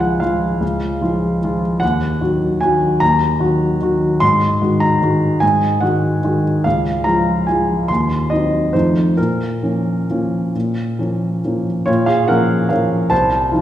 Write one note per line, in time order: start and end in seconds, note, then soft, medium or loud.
0.00 0.61 C#2 soft
0.00 0.18 F3 soft
0.00 0.19 G#3 soft
0.00 0.19 F4 soft
0.00 0.21 F#5 medium
0.00 0.65 G#5 medium
0.20 0.57 F3 soft
0.20 0.57 G#3 soft
0.20 0.58 F4 soft
0.20 1.62 F5 medium
0.61 1.00 C#2 soft
1.01 1.39 F3 soft
1.01 1.39 G#3 soft
1.01 1.39 F4 soft
1.44 1.79 F3 soft
1.44 1.79 G#3 soft
1.44 1.79 F4 soft
1.80 2.20 D#2 medium
1.80 2.61 F#5 medium
2.21 2.58 D#3 soft
2.21 2.58 F#3 soft
2.21 2.58 F#4 soft
2.61 2.97 D#3 soft
2.61 2.98 F#3 soft
2.61 2.98 F#4 soft
2.61 3.00 G#5 medium
3.00 3.40 D#2 medium
3.00 4.21 A#5 medium
3.40 3.77 D#3 soft
3.40 3.77 F#3 soft
3.40 3.78 F#4 soft
3.82 4.17 D#3 soft
3.82 4.18 F#3 soft
3.82 4.18 F#4 soft
4.20 4.60 G#2 medium
4.20 4.81 C6 medium
4.62 4.98 D#3 soft
4.62 4.98 G#3 soft
4.62 4.99 F#4 soft
4.80 5.42 A#5 medium
5.02 5.38 D#3 soft
5.02 5.38 G#3 soft
5.02 5.39 F#4 soft
5.40 5.81 G#2 soft
5.40 5.81 G#5 medium
5.81 6.20 D#3 soft
5.81 6.20 G#3 soft
5.81 6.20 F#4 soft
5.81 6.44 F#5 medium
6.24 6.61 D#3 soft
6.24 6.61 G#3 soft
6.24 6.62 F#4 soft
6.64 7.05 C#2 soft
6.64 7.05 F5 medium
7.04 7.44 F3 soft
7.04 7.44 G#3 soft
7.04 7.44 F4 soft
7.04 7.47 A#5 medium
7.47 7.85 F3 soft
7.47 7.86 G#3 soft
7.47 7.86 F4 soft
7.47 7.89 G#5 medium
7.88 8.30 D#2 soft
7.88 8.30 C6 medium
8.30 8.70 F#3 soft
8.30 8.70 C4 soft
8.30 8.71 D#4 soft
8.30 8.73 D#5 medium
8.73 9.16 F2 soft
8.73 9.13 F3 soft
8.73 9.14 A3 soft
8.73 9.14 D#4 soft
8.73 9.17 C5 medium
9.17 9.61 A#2 soft
9.17 11.67 A#4 medium
9.63 10.05 F3 soft
9.63 10.05 A#3 soft
9.63 10.05 C#4 soft
10.10 10.51 F3 soft
10.10 10.51 A#3 soft
10.10 10.52 C#4 soft
10.55 10.98 A#2 soft
10.99 11.40 F3 soft
10.99 11.41 A#3 soft
10.99 11.41 C#4 soft
11.44 11.84 F3 soft
11.44 11.84 A#3 soft
11.44 11.84 C#4 soft
11.86 12.27 A#2 medium
11.86 12.06 F4 medium
11.86 12.07 C#5 medium
12.06 12.27 G#4 medium
12.06 12.28 F5 medium
12.28 12.66 F3 soft
12.28 12.67 A#3 soft
12.28 12.67 C#4 soft
12.28 12.67 A#4 medium
12.28 12.70 F#5 medium
12.69 13.07 F3 soft
12.69 13.08 A#3 soft
12.69 13.08 C#4 soft
12.69 13.08 A#4 soft
12.69 13.10 F5 medium
13.10 13.50 C2 soft
13.10 13.62 C5 medium
13.10 13.62 A5 medium
13.52 13.62 F3 soft
13.52 13.62 D#4 soft
13.52 13.62 F4 soft